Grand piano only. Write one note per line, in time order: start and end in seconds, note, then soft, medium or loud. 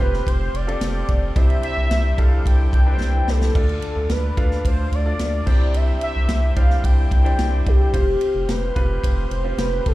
0.00 0.67 C4 medium
0.00 0.67 F4 medium
0.00 0.68 G4 medium
0.00 1.36 C5 medium
0.67 1.18 C4 medium
0.67 1.19 F4 medium
0.67 1.19 G4 medium
0.67 1.19 A4 medium
1.36 2.14 C3 medium
1.36 1.97 D4 medium
1.36 1.97 E4 medium
1.36 1.97 G4 medium
1.36 1.97 C5 medium
2.18 2.69 D4 medium
2.18 2.69 E4 medium
2.18 2.69 G4 medium
2.18 2.69 A4 medium
2.87 3.38 D4 medium
2.87 3.38 E4 medium
2.87 3.38 G4 medium
2.87 2.93 B4 medium
2.93 3.41 C5 medium
3.55 4.33 D3 medium
3.55 4.17 D4 medium
3.55 4.17 F4 medium
3.55 4.17 A4 medium
3.55 4.17 D5 medium
4.37 4.88 D4 medium
4.37 4.88 F4 medium
4.37 4.88 A4 medium
4.37 4.88 F5 medium
5.06 5.45 D4 medium
5.06 5.47 F4 medium
5.06 5.47 A4 medium
5.06 5.47 D5 medium
5.46 6.25 C3 medium
5.46 6.34 D4 medium
5.46 6.34 E4 medium
5.46 6.34 G4 medium
5.46 6.35 C5 medium
6.56 7.08 D4 medium
6.56 7.08 E4 medium
6.56 7.08 G4 medium
6.56 7.08 C5 medium
7.24 7.76 D4 medium
7.24 7.76 E4 medium
7.24 7.76 G4 medium
7.24 7.76 C5 medium
7.93 8.55 C4 medium
7.93 8.55 F4 medium
7.93 8.55 G4 medium
7.93 8.55 C5 medium
8.75 9.27 C4 medium
8.75 9.27 F4 medium
8.75 9.27 G4 medium
8.75 9.27 B4 medium
9.44 9.94 C4 medium
9.44 9.94 F4 medium
9.44 9.94 G4 medium
9.44 9.94 C5 medium